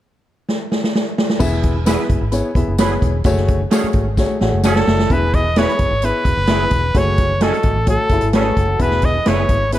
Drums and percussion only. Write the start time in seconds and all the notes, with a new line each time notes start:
0.49 snare
0.72 snare
0.84 snare
0.95 snare
1.18 snare
1.29 snare
1.40 kick, crash, tambourine
1.63 kick, closed hi-hat
1.86 snare, closed hi-hat, tambourine
2.00 snare
2.09 kick, closed hi-hat
2.32 closed hi-hat, tambourine
2.55 kick, closed hi-hat
2.78 snare, closed hi-hat, tambourine
3.02 kick, closed hi-hat
3.24 kick, closed hi-hat, tambourine
3.37 snare
3.48 kick, closed hi-hat
3.71 snare, closed hi-hat, tambourine
3.84 closed hi-hat
3.93 kick, closed hi-hat
4.17 kick, snare, tambourine
4.41 snare
4.64 snare, tambourine
4.76 snare
4.87 snare
4.99 snare
5.10 kick, closed hi-hat
5.34 kick, closed hi-hat
5.56 snare, closed hi-hat
5.69 closed hi-hat
5.79 kick, closed hi-hat
6.02 closed hi-hat
6.25 kick, closed hi-hat
6.47 snare, closed hi-hat
6.71 kick, closed hi-hat
6.95 kick, closed hi-hat
7.18 kick, closed hi-hat
7.41 snare, closed hi-hat
7.54 closed hi-hat
7.63 kick, closed hi-hat
7.87 kick, closed hi-hat
8.09 kick, closed hi-hat
8.21 closed hi-hat
8.33 snare, closed hi-hat
8.57 kick, closed hi-hat
8.79 kick, closed hi-hat
8.91 snare
9.02 kick, closed hi-hat
9.26 snare, closed hi-hat
9.49 kick, closed hi-hat
9.72 closed hi-hat